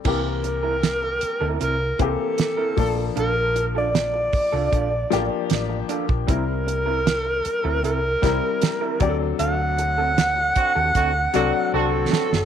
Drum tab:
CC |x---------------|----------------|----------------|----------------|
HH |--x-x-x-x-x-x-o-|x-x-x-o-x-x-x-x-|x-x-x-x-x-x-x-x-|x-x-x-x-x-x-----|
SD |----o-------o---|----o-----o-o---|----o-----o-o---|----o---------oo|
BD |o---------o---o-|------o-o------o|o---------o---o-|------o-o-------|